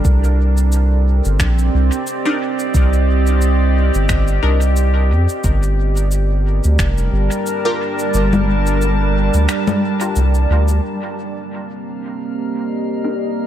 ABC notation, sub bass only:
X:1
M:4/4
L:1/16
Q:"Swing 16ths" 1/4=89
K:Cdor
V:1 name="Sub bass" clef=bass
C,,6- C,, G,,, B,,,2 C,, z4 z | C,,6- C,, G,,, G,,,2 C,,4 F,, z | G,,,6- G,,, D,, F,,,2 G,,, z4 z | G,,,6- G,,, D,, z4 C,,2 D,,2 |
z16 |]